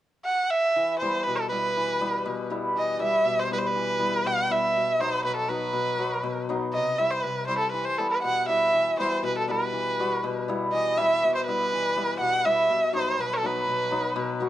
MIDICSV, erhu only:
0, 0, Header, 1, 2, 480
1, 0, Start_track
1, 0, Key_signature, 1, "minor"
1, 0, Tempo, 497925
1, 736, Time_signature, 2, 2, 24, 8
1, 9857, Tempo, 493827
1, 14004, End_track
2, 0, Start_track
2, 0, Title_t, "Erhu"
2, 0, Program_c, 0, 110
2, 242, Note_on_c, 0, 78, 81
2, 489, Note_on_c, 0, 76, 91
2, 503, Note_off_c, 0, 78, 0
2, 953, Note_off_c, 0, 76, 0
2, 959, Note_on_c, 0, 72, 75
2, 1187, Note_on_c, 0, 71, 83
2, 1202, Note_off_c, 0, 72, 0
2, 1308, Note_on_c, 0, 69, 73
2, 1323, Note_off_c, 0, 71, 0
2, 1429, Note_off_c, 0, 69, 0
2, 1435, Note_on_c, 0, 71, 80
2, 2364, Note_off_c, 0, 71, 0
2, 2681, Note_on_c, 0, 75, 73
2, 2890, Note_off_c, 0, 75, 0
2, 2917, Note_on_c, 0, 76, 86
2, 3272, Note_on_c, 0, 72, 78
2, 3286, Note_off_c, 0, 76, 0
2, 3382, Note_off_c, 0, 72, 0
2, 3400, Note_on_c, 0, 71, 83
2, 3453, Note_on_c, 0, 72, 71
2, 3467, Note_off_c, 0, 71, 0
2, 3535, Note_on_c, 0, 71, 88
2, 3549, Note_off_c, 0, 72, 0
2, 4114, Note_on_c, 0, 78, 85
2, 4128, Note_off_c, 0, 71, 0
2, 4353, Note_on_c, 0, 76, 78
2, 4367, Note_off_c, 0, 78, 0
2, 4826, Note_on_c, 0, 72, 76
2, 4840, Note_off_c, 0, 76, 0
2, 5054, Note_off_c, 0, 72, 0
2, 5060, Note_on_c, 0, 71, 71
2, 5165, Note_off_c, 0, 71, 0
2, 5171, Note_on_c, 0, 69, 77
2, 5291, Note_on_c, 0, 71, 77
2, 5305, Note_off_c, 0, 69, 0
2, 6255, Note_off_c, 0, 71, 0
2, 6488, Note_on_c, 0, 75, 81
2, 6732, Note_on_c, 0, 76, 82
2, 6746, Note_off_c, 0, 75, 0
2, 6853, Note_on_c, 0, 72, 78
2, 6867, Note_off_c, 0, 76, 0
2, 6968, Note_on_c, 0, 71, 71
2, 6983, Note_off_c, 0, 72, 0
2, 7197, Note_off_c, 0, 71, 0
2, 7203, Note_on_c, 0, 72, 82
2, 7305, Note_off_c, 0, 72, 0
2, 7310, Note_on_c, 0, 69, 75
2, 7433, Note_off_c, 0, 69, 0
2, 7439, Note_on_c, 0, 71, 71
2, 7567, Note_on_c, 0, 72, 80
2, 7581, Note_off_c, 0, 71, 0
2, 7692, Note_on_c, 0, 69, 66
2, 7707, Note_off_c, 0, 72, 0
2, 7814, Note_off_c, 0, 69, 0
2, 7820, Note_on_c, 0, 71, 62
2, 7924, Note_off_c, 0, 71, 0
2, 7930, Note_on_c, 0, 78, 85
2, 8158, Note_off_c, 0, 78, 0
2, 8183, Note_on_c, 0, 76, 87
2, 8628, Note_off_c, 0, 76, 0
2, 8675, Note_on_c, 0, 72, 78
2, 8891, Note_off_c, 0, 72, 0
2, 8923, Note_on_c, 0, 71, 75
2, 9024, Note_off_c, 0, 71, 0
2, 9040, Note_on_c, 0, 69, 73
2, 9142, Note_off_c, 0, 69, 0
2, 9166, Note_on_c, 0, 71, 75
2, 10073, Note_off_c, 0, 71, 0
2, 10344, Note_on_c, 0, 75, 83
2, 10589, Note_on_c, 0, 76, 98
2, 10604, Note_off_c, 0, 75, 0
2, 10946, Note_off_c, 0, 76, 0
2, 10951, Note_on_c, 0, 72, 75
2, 11056, Note_off_c, 0, 72, 0
2, 11061, Note_on_c, 0, 71, 92
2, 11743, Note_off_c, 0, 71, 0
2, 11778, Note_on_c, 0, 78, 92
2, 12021, Note_on_c, 0, 76, 90
2, 12035, Note_off_c, 0, 78, 0
2, 12501, Note_off_c, 0, 76, 0
2, 12518, Note_on_c, 0, 72, 73
2, 12753, Note_on_c, 0, 71, 70
2, 12767, Note_off_c, 0, 72, 0
2, 12875, Note_on_c, 0, 69, 76
2, 12890, Note_off_c, 0, 71, 0
2, 13001, Note_on_c, 0, 71, 81
2, 13015, Note_off_c, 0, 69, 0
2, 13948, Note_off_c, 0, 71, 0
2, 14004, End_track
0, 0, End_of_file